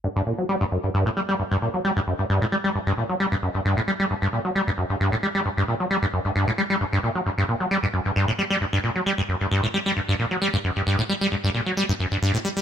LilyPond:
\new Staff \with { instrumentName = "Acid bass" } { \clef bass \time 4/4 \key g \minor \tempo 4 = 133 g,16 g,16 bes,16 fis16 g16 g,16 fis,16 g,16 g,16 a,16 g16 g16 g,16 g,16 bes,16 fis16 | g16 g,16 fis,16 g,16 g,16 a,16 g16 g16 g,16 g,16 bes,16 fis16 g16 g,16 fis,16 g,16 | g,16 a,16 g16 g16 g,16 g,16 bes,16 fis16 g16 g,16 fis,16 g,16 g,16 a,16 g16 g16 | g,16 g,16 bes,16 fis16 g16 g,16 fis,16 g,16 g,16 a,16 g16 g16 g,16 g,16 bes,16 fis16 |
g,16 g,16 bes,16 fis16 g16 g,16 fis,16 g,16 g,16 a,16 g16 g16 g,16 g,16 bes,16 fis16 | g16 g,16 fis,16 g,16 g,16 a,16 g16 g16 g,16 g,16 bes,16 fis16 g16 g,16 fis,16 g,16 | g,16 a,16 g16 g16 g,16 g,16 bes,16 fis16 g16 g,16 fis,16 g,16 g,16 a,16 g16 g16 | }